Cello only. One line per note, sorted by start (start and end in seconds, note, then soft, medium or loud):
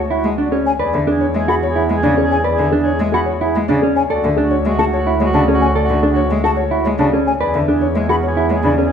0.24 0.35 G#3 medium
0.94 1.04 D3 medium
1.35 1.45 G#3 medium
1.90 2.00 G#3 medium
2.03 2.14 C#3 medium
2.59 2.69 D3 medium
3.00 3.10 G#3 medium
3.56 3.66 G#3 medium
3.70 3.80 C#3 medium
4.24 4.34 D3 medium
4.65 4.76 G#3 medium
5.21 5.31 G#3 medium
5.34 5.44 C#3 medium
5.89 5.99 D3 medium
6.31 6.41 G#3 medium
6.85 6.96 G#3 medium
6.99 7.09 C#3 medium
7.54 7.65 D3 medium
7.95 8.06 G#3 medium
8.50 8.60 G#3 medium
8.63 8.74 C#3 medium